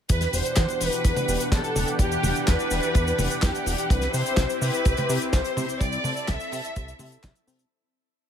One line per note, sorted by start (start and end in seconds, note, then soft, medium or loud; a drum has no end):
0.09 0.27 E2 loud
0.09 3.86 B2 medium
0.09 3.86 E3 medium
0.09 3.86 D4 medium
0.09 3.86 G4 medium
0.09 0.33 B4 loud
0.09 3.86 F#5 medium
0.09 kick loud
0.09 closed hi-hat loud
0.09 cabasa medium
0.21 snare soft
0.21 closed hi-hat medium
0.21 cabasa soft
0.33 0.42 E1 medium
0.33 0.81 C5 loud
0.33 open hi-hat loud
0.33 cabasa medium
0.45 closed hi-hat medium
0.45 cabasa soft
0.56 0.66 E2 loud
0.56 kick loud
0.56 snare loud
0.56 clap loud
0.56 closed hi-hat loud
0.56 cabasa medium
0.68 closed hi-hat medium
0.68 cabasa soft
0.81 0.90 E1 medium
0.81 1.52 B4 loud
0.81 open hi-hat loud
0.81 cabasa medium
0.92 closed hi-hat medium
0.92 cabasa soft
1.05 1.13 E2 loud
1.05 kick loud
1.05 closed hi-hat loud
1.05 cabasa medium
1.16 closed hi-hat medium
1.16 high tom medium
1.16 cabasa soft
1.28 1.37 E1 medium
1.28 open hi-hat loud
1.28 cabasa medium
1.40 closed hi-hat medium
1.40 cabasa medium
1.52 1.61 E2 loud
1.52 1.97 A4 medium
1.52 kick loud
1.52 snare loud
1.52 clap loud
1.52 closed hi-hat loud
1.52 cabasa medium
1.64 closed hi-hat medium
1.64 cabasa soft
1.76 1.85 E1 loud
1.76 open hi-hat loud
1.76 high tom medium
1.76 cabasa medium
1.88 closed hi-hat medium
1.88 cabasa soft
1.99 2.17 E2 loud
1.99 2.44 G4 loud
1.99 kick loud
1.99 closed hi-hat loud
1.99 cabasa medium
2.12 closed hi-hat medium
2.12 cabasa soft
2.23 2.32 E1 medium
2.23 open hi-hat loud
2.23 high tom medium
2.23 cabasa medium
2.35 closed hi-hat medium
2.35 cabasa soft
2.48 2.56 E2 loud
2.48 3.43 B4 loud
2.48 kick loud
2.48 snare loud
2.48 clap loud
2.48 closed hi-hat loud
2.48 cabasa medium
2.59 closed hi-hat medium
2.59 cabasa soft
2.71 2.80 E1 medium
2.71 open hi-hat loud
2.71 cabasa medium
2.83 closed hi-hat medium
2.83 cabasa soft
2.95 3.13 E2 loud
2.95 kick loud
2.95 closed hi-hat medium
2.95 cabasa medium
3.07 closed hi-hat medium
3.07 cabasa soft
3.18 3.28 E1 medium
3.18 open hi-hat loud
3.18 high tom medium
3.18 cabasa medium
3.30 closed hi-hat medium
3.30 cabasa soft
3.42 3.51 E2 medium
3.42 3.90 G4 medium
3.42 kick loud
3.42 snare loud
3.42 clap loud
3.42 closed hi-hat loud
3.42 cabasa medium
3.55 closed hi-hat medium
3.55 cabasa soft
3.66 3.75 E1 loud
3.66 open hi-hat loud
3.66 cabasa medium
3.78 closed hi-hat medium
3.78 cabasa soft
3.90 4.08 C2 loud
3.90 7.68 C4 medium
3.90 7.68 E4 medium
3.90 5.79 G4 medium
3.90 4.14 B4 loud
3.90 kick loud
3.90 closed hi-hat loud
3.90 cabasa medium
4.01 snare soft
4.01 closed hi-hat medium
4.01 cabasa soft
4.14 4.23 C3 medium
4.14 4.58 C5 loud
4.14 open hi-hat loud
4.14 cabasa medium
4.26 closed hi-hat medium
4.26 cabasa soft
4.37 4.46 C2 loud
4.37 kick loud
4.37 snare loud
4.37 clap loud
4.37 closed hi-hat loud
4.37 cabasa medium
4.50 closed hi-hat medium
4.50 cabasa soft
4.62 4.70 C3 medium
4.62 5.29 B4 loud
4.62 open hi-hat loud
4.62 cabasa medium
4.73 closed hi-hat medium
4.73 cabasa soft
4.85 4.94 C2 loud
4.85 kick loud
4.85 closed hi-hat loud
4.85 cabasa medium
4.97 closed hi-hat medium
4.97 high tom medium
4.97 cabasa soft
5.09 5.18 C3 medium
5.09 open hi-hat loud
5.09 cabasa medium
5.20 closed hi-hat medium
5.20 cabasa soft
5.33 5.42 C2 loud
5.33 5.77 C5 loud
5.33 kick loud
5.33 snare loud
5.33 clap loud
5.33 closed hi-hat loud
5.33 cabasa medium
5.45 closed hi-hat medium
5.45 cabasa soft
5.57 5.66 C3 loud
5.57 open hi-hat loud
5.57 high tom medium
5.57 cabasa medium
5.68 closed hi-hat medium
5.68 cabasa soft
5.81 5.98 C2 loud
5.81 7.69 A4 medium
5.81 6.28 D5 loud
5.81 kick loud
5.81 closed hi-hat medium
5.81 cabasa medium
5.92 closed hi-hat medium
5.92 cabasa soft
6.04 6.13 C3 medium
6.04 open hi-hat loud
6.04 high tom medium
6.04 cabasa medium
6.17 closed hi-hat medium
6.17 cabasa soft
6.28 6.37 C2 loud
6.28 7.24 E5 loud
6.28 kick loud
6.28 snare loud
6.28 clap loud
6.28 closed hi-hat loud
6.28 cabasa medium
6.40 closed hi-hat medium
6.40 cabasa soft
6.52 6.61 C3 loud
6.52 open hi-hat loud
6.52 cabasa medium
6.64 closed hi-hat medium
6.64 cabasa soft
6.76 6.94 C2 loud
6.76 kick loud
6.76 closed hi-hat medium
6.76 cabasa medium
6.88 closed hi-hat medium
6.88 cabasa soft
6.99 7.17 C3 loud
6.99 open hi-hat loud
6.99 high tom medium
6.99 cabasa medium
7.12 closed hi-hat medium
7.12 cabasa medium
7.23 7.32 C2 medium
7.23 kick loud
7.23 snare loud
7.23 clap loud
7.23 closed hi-hat medium
7.23 cabasa medium
7.35 closed hi-hat medium
7.35 cabasa soft
7.47 7.65 C3 medium
7.47 open hi-hat loud
7.47 cabasa medium
7.59 closed hi-hat medium
7.59 cabasa medium